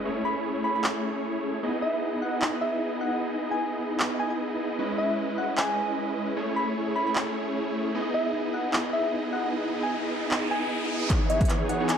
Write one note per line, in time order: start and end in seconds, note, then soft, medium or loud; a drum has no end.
0.05 1.61 A3 medium
0.05 1.61 C#4 medium
0.05 1.61 E4 medium
0.05 1.61 G#4 medium
0.05 1.61 C#5 medium
0.25 0.39 B5 medium
0.64 0.71 B5 medium
0.75 0.81 B5 medium
0.84 clap medium
1.63 4.77 B3 medium
1.63 4.77 D#4 medium
1.63 4.77 E4 medium
1.63 4.77 G#4 medium
1.63 4.77 D#5 medium
1.82 1.96 E5 medium
2.22 2.36 F#5 medium
2.42 clap medium
2.61 2.75 E5 medium
3.01 3.15 F#5 medium
3.51 3.64 G#5 medium
4.00 clap medium
4.20 4.26 G#5 medium
4.30 4.36 G#5 medium
4.79 6.34 G#3 medium
4.79 6.34 C#4 medium
4.79 6.34 E4 medium
4.79 6.34 B4 medium
4.79 6.34 D#5 medium
4.98 5.12 E5 medium
5.38 5.52 F#5 medium
5.58 6.13 G#5 medium
5.58 clap medium
6.36 7.92 A3 medium
6.36 7.92 C#4 medium
6.36 7.92 E4 medium
6.36 7.92 G#4 medium
6.36 7.92 C#5 medium
6.56 6.70 B5 medium
6.96 7.03 B5 medium
7.07 7.12 B5 medium
7.15 clap medium
7.94 11.08 B3 medium
7.94 11.08 D#4 medium
7.94 11.08 E4 medium
7.94 11.08 G#4 medium
7.94 11.08 D#5 medium
7.94 riser medium
8.14 8.28 E5 medium
8.54 8.68 F#5 medium
8.73 clap medium
8.93 9.07 E5 medium
9.33 9.46 F#5 medium
9.83 9.96 G#5 medium
10.31 clap medium
10.51 10.58 G#5 medium
10.62 10.68 G#5 medium
11.10 11.78 E3 medium
11.10 11.78 B3 medium
11.10 11.78 D#4 medium
11.10 11.78 G#4 medium
11.10 11.78 C#5 loud
11.10 kick loud
11.10 clap soft
11.10 closed hi-hat medium
11.10 riser medium
11.30 11.44 E5 medium
11.30 closed hi-hat medium
11.41 kick medium
11.41 closed hi-hat soft
11.45 closed hi-hat medium
11.50 clap soft
11.50 closed hi-hat medium
11.69 11.83 F#5 medium
11.69 closed hi-hat medium
11.80 11.92 E3 medium
11.80 11.92 B3 medium
11.80 11.92 D#4 medium
11.80 11.92 G#4 medium
11.80 11.92 C#5 loud
11.89 11.98 G#5 loud
11.89 clap soft
11.89 closed hi-hat medium